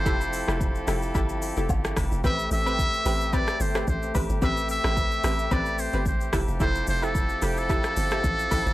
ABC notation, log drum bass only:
X:1
M:4/4
L:1/16
Q:"Swing 16ths" 1/4=110
K:Am
V:1 name="Log drum bass" clef=bass
F,,,3 F,,,3 F,,,2 G,,,3 F,,, G,,,2 F,,, F,,, | A,,,2 A,,,4 A,,,3 z G,,,2 A,,,2 A,,, G,,, | A,,,3 A,,,3 A,,,2 A,,,3 G,,, A,,,2 F,,, F,,, | F,,,2 F,,,4 F,,,3 z G,,,2 A,,,2 A,,, G,,, |]